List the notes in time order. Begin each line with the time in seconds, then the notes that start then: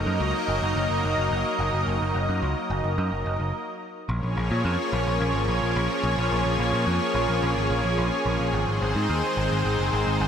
Already playing: F#3 A#3 D#4 A#4 D#5
0.06 F#2
0.20 C#2
0.48 F#1
0.62 F#1
0.76 F#1
0.90 F#1
1.04 F#1
1.18 F#1
1.31 F#1
1.59 F#1
1.73 F#1
1.87 F#1
2.01 F#1
2.15 F#1
2.29 F#2
2.42 C#2
2.70 F#1
2.84 F#1
2.98 F#2
3.12 F#1
3.26 F#1
3.40 F#1
4.09 A#1 F3 A#3 C#4 G#4 C#5
4.23 A#1
4.37 A#1
4.51 A#2
4.65 F2
4.93 A#1
5.07 A#1
5.20 A#1
5.34 G#1
5.48 A#1
5.62 A#1
5.76 A#1
6.04 A#1
6.18 A#1
6.31 A#1
6.45 A#1
6.59 A#1
6.73 A#2
6.87 F2
7.15 A#1
7.29 A#1
7.42 A#1
7.56 G#1
7.70 A#1
7.84 A#1
7.98 A#1
8.26 A#1
8.40 A#1
8.53 G#1 D#3 G#3 C4 C5
8.68 G#1
8.82 G#1
8.95 G#2
9.10 D#2
9.37 G#1
9.51 G#1
9.65 G#1
9.79 F#1
9.93 G#1
10.07 G#1
10.20 G#1